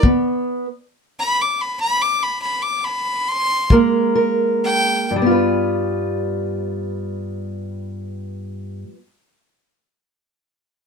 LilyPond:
<<
  \new Staff \with { instrumentName = "Fiddle" } { \time 12/8 \key g \mixolydian \tempo 4. = 41 r4. b''16 d'''16 b''16 b''16 d'''16 b''16 b''16 d'''16 b''8 c'''8 r4 g''8 | r1. | }
  \new Staff \with { instrumentName = "Steel-string acoustic guitar" } { \time 12/8 \key g \mixolydian << { b4 r2. r8 <aes bes bes'>8 bes'4 | <g b f' b'>1. | } \\ { g,4 r2. r8 aes,4 r8 | g,1. | } >> }
  \new DrumStaff \with { instrumentName = "Drums" } \drummode { \time 12/8 bd4. r4. r4. bd4. | r4. r4. r4. r4. | }
>>